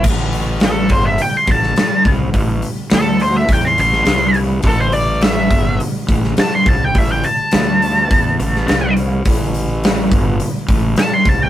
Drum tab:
CC |x---------------|----------------|----------------|----------------|
HH |--o-o-o-o-o-o-o-|o-o-o-o-o-o-o-o-|o-o-o-o-o-o-o-o-|o-o-o-o-o-o-o-o-|
SD |----o------oo---|----o------oo---|----o------oo---|----o------oo---|
BD |o-----o---o---o-|o-------o-------|o-----o---o---o-|o-------o-------|

CC |----------------|
HH |o-o-o-o-o-o-o-o-|
SD |----o-------o---|
BD |o-----o---o---o-|